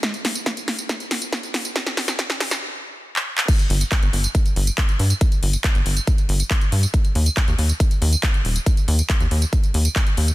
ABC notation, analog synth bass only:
X:1
M:4/4
L:1/16
Q:1/4=139
K:Eblyd
V:1 name="Analog synth bass" clef=bass
z16 | z16 | z2 G,,, z2 G,,, G,,, z3 G,,, z3 G,, z | z2 G,,, z2 G,,, G,,, z3 G,,, z3 G,, z |
z2 E,, z2 E,, E,, z3 E,, z3 E,,, z | z2 E,, z2 E,, E,, z3 E,, z3 E,, z |]